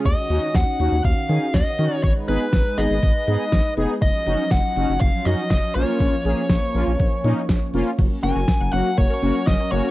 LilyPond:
<<
  \new Staff \with { instrumentName = "Lead electric guitar" } { \time 4/4 \key dis \minor \tempo 4 = 121 dis''4 fis''4 eis''4 dis''4 | cis''8 b'4 dis''2 r8 | dis''4 fis''4 eis''8 dis''8 dis''8 cis''8~ | cis''2. r4 |
r8 gis''4 fis''8 cis''4 dis''8 cis''8 | }
  \new Staff \with { instrumentName = "Analog polysynth" } { \time 4/4 \key dis \minor r8 <cis' dis' fis'>8 r8 <cis' dis' fis'>8 r8 <cis' dis' gis'>8 r8 <cis' dis' fis'>8 | r8 <b dis' gis'>8 r8 <b dis' gis'>8 r8 <b dis' gis'>8 r8 <b dis' gis'>8 | r8 <cis' dis' fis'>8 r8 <cis' dis' fis'>8 r8 <cis' dis' fis'>8 r8 <ais cis' eis'>8~ | <ais cis' eis'>8 <ais cis' gis'>8 r8 <ais cis' eis'>8 r8 <ais cis' dis'>8 r8 <ais cis' eis'>8 |
r8 <ais cis' fis'>8 r8 <ais cis' fis'>8 r8 <ais cis' fis'>8 r8 <ais cis' fis'>8 | }
  \new Staff \with { instrumentName = "Analog synth pad" } { \time 4/4 \key dis \minor << { <cis' fis'>1 | <dis' b'>1 | <eis cis'>1~ | <eis cis'>1 |
<cis' ais'>1 | } \\ { dis1 | gis1 | fis2.~ fis8 ais8~ | ais1 |
fis1 | } >> }
  \new Staff \with { instrumentName = "Synth arpeggio sound" } { \time 4/4 \key dis \minor r1 | r1 | r1 | r1 |
fis16 r16 ais16 ais'16 r16 fis''16 fis16 r16 ais16 ais'16 cis'16 fis''16 fis16 cis'16 ais16 ais'16 | }
  \new Staff \with { instrumentName = "Analog synth bass" } { \clef bass \time 4/4 \key dis \minor dis,16 r16 dis,16 r16 dis,16 r16 dis,16 dis,16 dis,16 r16 dis16 r16 dis,16 r16 dis16 r16 | gis,,16 r16 gis,,16 r16 gis,,16 r16 gis,,16 gis,,16 gis,,16 r16 gis,16 r16 gis,,16 r16 eis,,16 r16 | fis,,16 r16 fis,,16 r16 fis,,16 r16 fis,,16 fis,,16 fis,,16 r16 fis,16 r16 fis,,16 r16 ais,,16 r16 | ais,,16 r16 ais,,16 r16 ais,,16 r16 ais,,16 ais,,16 ais,,16 r16 ais,16 r16 ais,,16 r16 eis,,16 r16 |
fis,,16 r16 fis,,16 fis,,16 r16 fis,,16 fis,,16 r16 fis,,16 r16 fis,,16 r16 fis,,16 r16 fis,,16 r16 | }
  \new DrumStaff \with { instrumentName = "Drums" } \drummode { \time 4/4 <cymc hh bd>8 hh8 <hh bd sn>8 hh8 <hh bd>8 hh8 <hh bd sn>8 hh8 | <hh bd>8 hh8 <hh bd sn>8 hh8 <hh bd>8 hh8 <hh bd sn>8 hh8 | <hh bd>8 hh8 <hh bd sn>8 hh8 <hh bd>8 hh8 <hh bd sn>8 hh8 | <hh bd>8 hh8 <hh bd sn>8 hho8 <hh bd>8 hh8 <hh bd sn>8 hho8 |
<cymc hh bd>8 hh8 <hh bd sn>8 hh8 <hh bd>8 hh8 <hh bd sn>8 hh8 | }
>>